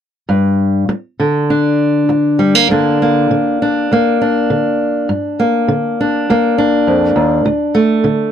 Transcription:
0.29 steel-string acoustic guitar G2
0.89 muted steel-string acoustic guitar stroke
1.20 steel-string acoustic guitar D3
1.50 steel-string acoustic guitar D4
2.09 muted steel-string acoustic guitar stroke
2.39 steel-string acoustic guitar G3
2.55 steel-string acoustic guitar A#3
2.69 steel-string acoustic guitar G2 D3 A#3 D4
3.02 steel-string acoustic guitar A#3
3.31 steel-string acoustic guitar D3
3.62 steel-string acoustic guitar D4
3.92 steel-string acoustic guitar D2 A#3
4.21 steel-string acoustic guitar D4
4.50 steel-string acoustic guitar D3
5.09 steel-string acoustic guitar G2
5.40 steel-string acoustic guitar A#3
5.68 steel-string acoustic guitar D3
6.01 steel-string acoustic guitar D4
6.30 steel-string acoustic guitar D2 A#3
6.58 steel-string acoustic guitar D4
6.87 steel-string acoustic guitar F2
7.16 steel-string acoustic guitar D#2
7.46 steel-string acoustic guitar D2
7.75 steel-string acoustic guitar A3
8.04 steel-string acoustic guitar D3

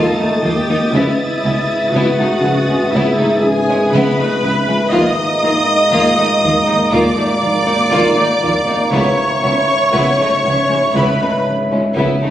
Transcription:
Already playing: synth drone G#1, cello section D#3, violin section A#3 F4 A5 D#6 A6, viola section A4, glass harmonica D#5
0.20 cello section D#2, violin section A3 D#4
0.42 double bass section D#2, cello section D#2 D#3, violin section A#3 F4 G5, viola section G4
0.69 cello section D#2, violin section A#3 D#4
0.92 synth drone G#1, cello section C#2 C#3, double bass section C#2, violin section B3 E4 E5, viola section E4, glass harmonica G#4 B4 E5
1.43 double bass section C#2, cello section C#2 C#4, violin section B3 E4
1.91 cello section C#2 C#3, double bass section C#2, violin section B3 E4 F#5, viola section F#4
2.18 cello section C#2, violin section A3 D#4
2.42 cello section C#2 C#3, double bass section C#2, violin section B3 E4
2.68 cello section C#2, violin section G#3 C#4
2.90 cello section C#2 C#3, double bass section C#2, viola section E4, vibraphone G#4, violin section E5
2.95 violin section B3 E4
3.17 cello section C#2, violin section A3 D#4
3.41 cello section C#3, viola section G#4, violin section G#5
3.68 cello section C#2, violin section G#3 C#4
3.90 cello section C#2 C#3, violin section B3 E4 B5, viola section B4
3.94 double bass section C#2
4.17 cello section C#2, violin section A3 D#4
4.42 cello section C#2 C#3, double bass section C#2, violin section B3 E4
4.67 cello section C#2, violin section G#3 C#4
4.90 synth drone G#1, cello section D#2 D#3, double bass section D#2, violin section A#3 F4 D#6, glass harmonica A#4 F5 A#5, viola section D#5, taiko
5.42 cello section D#2 D#4, double bass section D#2, violin section A#3 F4
5.91 cello section D#2 D#3, double bass section D#2, violin section A#3 F4, vibraphone A#5
6.16 cello section D#2, violin section A3 D#4
6.42 cello section D#2 D#3, double bass section D#2, violin section A#3 F4, taiko
6.66 cello section D#2, violin section A#3 D#4
6.90 cello section D#2 D#3, double bass section D#2, violin section A#3 F4 D6, viola section D5
7.15 cello section D#2, violin section A3 D#4
7.43 cello section D#3
7.66 cello section D#2, violin section A#3 D#4
7.90 cello section D#2 D#3, double bass section D#2, violin section A#3 F4
8.15 cello section D#2, violin section A3 D#4
8.40 cello section D#2 D#3, double bass section D#2, violin section A#3 F4
8.66 cello section D#2, violin section A#3 D#4
8.91 synth drone G#1, cello section C#2 C#3, double bass section C#2, violin section B3 E4 C#6, viola section C#5, glass harmonica C#5 E5, taiko
8.95 glass harmonica B5
9.42 cello section C#2 C#4, double bass section C#2, violin section B3 E4
9.93 cello section C#2 C#3, double bass section C#2, violin section B3 E4, taiko
10.18 cello section C#2, violin section A3 D#4
10.43 cello section C#2 C#3, double bass section C#2, violin section B3 E4
10.68 cello section C#2, violin section G#3 C#4
10.94 cello section C#2 C#3, double bass section C#2, violin section B3 E4 B5, viola section B4, taiko
11.20 cello section C#2, violin section A3 D#4
11.47 cello section C#3
11.71 cello section C#2, violin section G#3 C#4
11.97 cello section C#2 C#3, double bass section C#2, violin section B3 E4, taiko
12.22 cello section C#2, violin section A3 D#4

